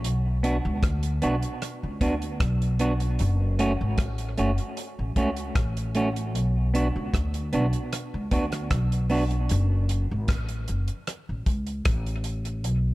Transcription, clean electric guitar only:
0.43 0.56 B3 medium
0.43 0.56 D4 medium
0.43 0.56 F#4 loud
1.22 1.34 B3 medium
1.22 1.35 D4 medium
1.22 1.35 F#4 loud
2.01 2.13 B3 medium
2.01 2.14 D4 loud
2.01 2.14 F#4 medium
2.80 2.92 B3 medium
2.80 2.93 D4 medium
2.80 2.93 F#4 medium
3.00 muted clean electric guitar stroke soft
3.59 3.71 A3 medium
3.59 3.72 C#4 medium
3.59 3.72 F#4 loud
4.38 4.50 A3 medium
4.38 4.50 C#4 medium
4.38 4.51 F#4 medium
5.17 5.29 A3 medium
5.17 5.29 C#4 medium
5.17 5.30 F#4 medium
5.95 6.08 A3 medium
5.95 6.08 C#4 medium
5.95 6.08 F#4 medium
6.74 6.86 B3 medium
6.74 6.87 D4 medium
6.74 6.87 F#4 medium
7.53 7.65 B3 medium
7.53 7.66 D4 medium
7.53 7.66 F#4 medium
8.31 8.44 B3 medium
8.31 8.44 D4 medium
8.31 8.45 F#4 medium
9.10 9.22 B3 medium
9.10 9.23 D4 loud
9.10 9.23 F#4 medium
9.31 muted clean electric guitar stroke soft

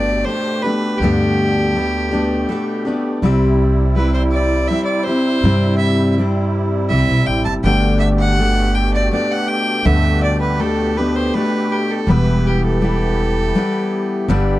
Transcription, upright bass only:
0.00 0.22 G1 medium
1.00 2.44 D2 medium
3.22 4.66 C2 medium
5.43 6.87 G2 medium
6.90 7.07 C2 medium
7.08 7.26 B1 medium
7.27 7.44 A1 medium
7.46 7.63 G1 medium
7.64 9.08 G1 medium
9.85 11.29 D2 medium
12.07 13.51 E1 medium
14.28 14.59 G1 medium

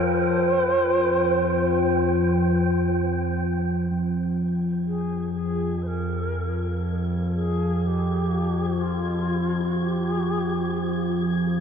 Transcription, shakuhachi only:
0.06 0.19 B4 loud
0.19 1.98 C5 loud
4.87 5.32 G#4 medium
5.34 5.84 G#4 medium
5.83 5.88 C5 medium
5.87 6.80 A#4 medium
7.33 7.82 G#4 medium
7.82 7.88 G#4 medium
7.87 8.82 G4 medium
8.80 9.78 F4 medium
9.77 11.19 G4 medium

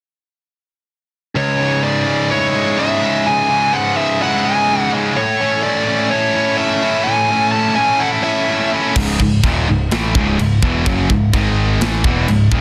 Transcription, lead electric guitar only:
1.37 1.83 C#5 medium
1.84 2.31 D5 medium
2.31 2.80 C#5 medium
2.79 3.27 E5 medium
3.26 3.75 G#5 loud
3.73 3.97 F#5 medium
3.97 4.22 E5 medium
4.22 4.46 F#5 medium
4.45 4.89 G#5 medium
5.17 5.63 C#5 medium
5.63 6.10 D5 medium
6.11 6.60 C#5 medium
6.57 7.07 E5 medium
7.04 7.49 G#5 loud
7.52 7.75 A5 loud
7.76 8.01 G#5 loud
8.00 8.06 F#5 loud
8.24 8.69 E5 medium

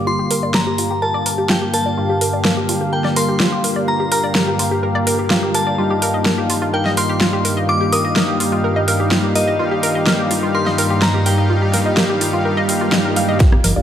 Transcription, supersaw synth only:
0.00 1.95 G2 medium
0.00 1.95 A#3 medium
0.00 1.95 G4 medium
0.00 1.95 F5 medium
1.97 5.75 G2 medium
1.97 5.75 A#3 medium
1.97 5.75 G4 medium
1.97 5.75 F5 medium
5.78 9.56 G2 medium
5.78 9.56 G3 medium
5.78 9.56 D#4 medium
5.78 9.56 G4 medium
5.78 9.56 F5 medium
9.59 13.37 G2 medium
9.59 13.37 G3 medium
9.59 13.37 D#4 medium
9.59 13.37 G4 medium
9.59 13.37 F5 medium
13.40 13.52 G2 medium
13.40 13.52 A#3 medium
13.40 13.52 G4 medium
13.40 13.52 F5 medium
13.76 13.82 G2 medium
13.76 13.82 A#3 medium
13.76 13.82 G4 medium
13.76 13.82 F5 medium

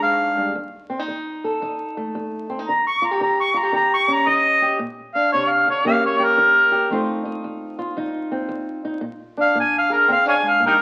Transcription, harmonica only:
0.02 0.54 F5 medium
2.68 2.85 A#5 medium
2.87 3.07 C#6 medium
3.05 3.21 A#5 medium
3.22 3.38 A#5 medium
3.40 3.59 C#6 medium
3.58 3.74 A#5 medium
3.76 3.91 A#5 medium
3.94 4.14 C#6 medium
4.13 4.30 A#5 medium
4.28 4.78 D#5 loud
5.15 5.31 F5 medium
5.33 5.51 C#5 medium
5.50 5.67 F5 medium
5.70 5.86 C#5 medium
5.87 6.03 F5 medium
6.06 6.25 C#5 medium
6.24 6.90 A#4 loud
9.41 9.56 F5 medium
9.60 9.75 G#5 medium
9.78 9.95 F5 medium
9.93 10.09 A#4 medium
10.12 10.27 F5 medium
10.28 10.35 C#5 medium
10.28 10.36 F5 medium
10.28 10.50 G#5 medium
10.48 10.63 F5 medium
10.66 10.75 D#4 medium
10.66 10.73 G4 medium
10.66 10.82 A#4 medium

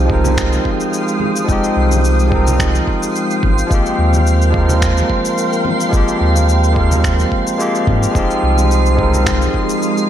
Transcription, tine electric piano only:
0.00 0.06 F3 medium
0.00 0.08 G#3 medium
0.00 0.10 C4 medium
0.00 0.12 D#4 medium
0.00 1.52 G4 medium
0.06 1.43 F3 medium
0.06 1.45 G#3 medium
0.06 1.46 C4 medium
0.12 1.47 D#4 medium
0.12 1.48 A#4 medium
1.45 2.26 F3 medium
1.45 2.28 G#3 medium
1.45 2.29 C4 medium
1.51 2.30 D#4 medium
1.51 2.31 G4 medium
2.28 3.66 F3 medium
2.28 3.67 G#3 medium
2.28 3.68 C4 medium
2.34 3.69 D#4 medium
2.34 3.70 A#4 medium
3.67 4.49 F3 medium
3.67 4.50 G#3 medium
3.67 4.51 A#3 medium
3.73 4.52 C4 medium
3.73 4.53 G4 medium
4.50 5.88 F3 medium
4.50 5.89 G#3 medium
4.50 5.90 A#3 medium
4.56 5.91 C4 medium
4.56 5.92 A#4 medium
5.89 6.71 F3 medium
5.89 6.72 G#3 medium
5.89 6.73 A#3 medium
5.95 6.74 C4 medium
5.95 6.75 G4 loud
6.72 7.55 F3 medium
6.72 7.56 G#3 medium
6.72 7.57 A#3 medium
6.78 7.58 C4 medium
6.78 7.59 A#4 medium
7.58 7.80 F3 medium
7.58 7.81 G#3 medium
7.58 7.81 A#3 medium
7.58 7.82 C4 medium
7.58 7.82 G4 medium
8.11 8.93 F3 medium
8.11 8.94 G#3 medium
8.11 8.95 C4 medium
8.17 8.96 D#4 medium
8.17 8.97 G4 medium
8.95 10.10 F3 medium
8.95 10.10 G#3 medium
8.95 10.10 C4 medium
9.01 10.10 D#4 medium
9.01 10.10 A#4 medium

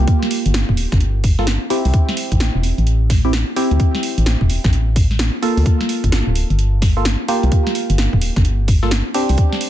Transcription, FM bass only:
0.46 0.64 G1 loud
0.69 0.87 D1 medium
0.92 1.58 G1 medium
1.85 1.92 C2 medium
2.32 2.50 A1 loud
2.55 2.73 E1 medium
2.78 3.44 A1 medium
3.71 3.78 D2 medium
4.18 4.36 A1 loud
4.41 4.59 E1 medium
4.64 5.30 A1 medium
5.57 5.64 D2 medium
6.04 6.22 G1 loud
6.27 6.45 D1 medium
6.50 7.16 G1 medium
7.43 7.50 C2 medium
7.90 8.08 G1 loud
8.13 8.31 D1 medium
8.36 9.02 G1 medium
9.30 9.36 C2 medium

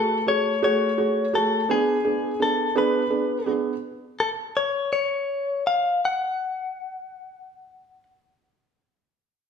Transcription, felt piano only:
0.00 0.17 A3 medium
0.00 0.17 F#4 medium
0.00 0.17 G#4 medium
0.26 0.53 A3 medium
0.26 0.53 F#4 soft
0.26 0.53 G#4 medium
0.62 0.88 A3 medium
0.62 0.88 F#4 medium
0.62 0.89 G#4 medium
0.97 1.24 A3 medium
0.97 1.24 F#4 medium
0.97 1.24 G#4 medium
1.33 1.60 A3 medium
1.33 1.60 F#4 medium
1.33 1.60 G#4 medium
1.69 1.95 B3 medium
1.69 1.95 D4 medium
1.69 1.96 G#4 medium
2.04 2.31 B3 medium
2.04 2.31 D4 medium
2.04 2.31 G#4 medium
2.40 2.66 B3 medium
2.40 2.66 D4 soft
2.40 2.66 G#4 medium
2.75 3.01 B3 medium
2.75 3.01 D4 medium
2.75 3.02 G#4 medium
3.10 3.36 B3 medium
3.10 3.37 D4 medium
3.10 3.37 G#4 medium
3.46 3.72 B3 medium
3.46 3.72 D4 medium
3.46 3.73 G#4 medium

